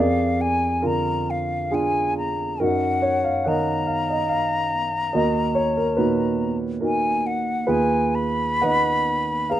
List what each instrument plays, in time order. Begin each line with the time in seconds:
Already playing: grand piano G#4 A#4 D5
0.00 grand piano F2, flute F5
0.41 flute G#5
0.82 grand piano D3 D4 F4 A#4
0.86 flute A#5
1.30 flute F5
1.71 grand piano D4 F4 G#4, flute G#5
2.18 flute A#5
2.60 grand piano F#2 D#4 F#4 A#4, flute F#5
3.02 grand piano C#5
3.24 grand piano F5
3.44 grand piano D#3 A#4 D#5 F#5, flute A#5
3.87 grand piano F5
4.09 grand piano D#5
4.29 grand piano F5
5.13 grand piano D#2 F#4 A#4 D#5
5.55 grand piano C#5
5.77 grand piano A#4
5.97 grand piano A#2 D#4 F#4 B4
6.81 grand piano D#4 F#4 A#4
6.85 flute G#5
7.27 flute F#5
7.67 grand piano D#2 F4 G#4 B4, flute G#5
8.15 flute B5
8.62 grand piano D#3 B4 D#5 F#5
9.50 grand piano G#4 B4 F5, flute A#5